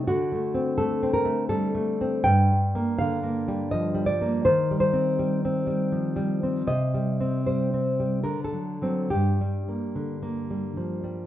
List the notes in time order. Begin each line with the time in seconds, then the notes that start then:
0.08 D3 F#4
0.32 A3
0.54 C4
0.78 A3 A4
1.03 C4
1.14 A#4
1.25 A3
1.49 G3 A4
1.75 A3
2.01 C4
2.24 G2 G5
2.52 G3
2.75 A#3
2.99 D3 F5
3.23 A#3
3.48 G3
3.71 F3 D#5
3.95 G3
4.06 D5
4.21 A#3
4.45 D#3 C5
4.71 G3
4.80 C5
4.93 C4
5.19 G3
5.45 C4
5.67 G3
5.92 F3
6.16 G3
6.43 C4
6.67 C3 D#5
6.94 G3
7.20 C4
7.46 G3 C5
7.74 C4
8.00 G3
8.24 D3 A#4
8.44 A4
8.52 F#3
8.82 F#3 C4
9.10 G2 G4
9.41 G3
9.68 A#3
9.95 D3
10.22 A#3
10.51 G3
10.77 F3
11.04 G3